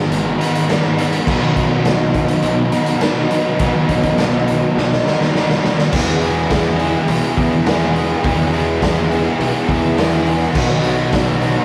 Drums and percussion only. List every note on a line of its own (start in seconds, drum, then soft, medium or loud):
0.12 closed hi-hat medium
0.41 closed hi-hat medium
0.55 closed hi-hat medium
0.70 snare loud
0.70 closed hi-hat medium
0.99 closed hi-hat medium
1.13 closed hi-hat medium
1.27 kick loud
1.27 crash loud
1.56 kick medium
1.56 closed hi-hat medium
1.85 snare loud
1.85 closed hi-hat medium
2.14 kick medium
2.14 closed hi-hat medium
2.28 closed hi-hat medium
2.42 closed hi-hat medium
2.72 closed hi-hat medium
2.86 closed hi-hat medium
3.01 snare loud
3.01 closed hi-hat medium
3.31 closed hi-hat medium
3.59 kick loud
3.59 closed hi-hat medium
3.89 kick medium
3.89 closed hi-hat medium
4.03 kick medium
4.03 closed hi-hat medium
4.18 snare loud
4.18 closed hi-hat medium
4.48 closed hi-hat medium
4.78 snare medium
4.93 snare medium
5.07 snare medium
5.21 snare medium
5.35 snare medium
5.50 snare medium
5.64 snare medium
5.79 snare medium
5.93 kick loud
5.93 crash loud
6.08 snare soft
6.22 open hi-hat medium
6.50 kick medium
6.50 snare loud
6.50 open hi-hat medium
6.80 open hi-hat medium
7.08 open hi-hat medium
7.38 kick medium
7.38 open hi-hat medium
7.66 snare loud
7.66 open hi-hat medium
7.96 open hi-hat medium
8.24 kick loud
8.24 open hi-hat medium
8.54 open hi-hat medium
8.82 kick medium
8.82 snare loud
8.82 open hi-hat medium
9.12 open hi-hat medium
9.41 open hi-hat medium
9.69 kick medium
9.69 open hi-hat medium
9.98 snare loud
9.98 open hi-hat medium
10.26 open hi-hat medium
10.55 kick loud
10.55 crash loud
10.70 snare soft
10.84 open hi-hat medium
11.13 kick medium
11.13 snare loud
11.13 open hi-hat medium
11.42 open hi-hat medium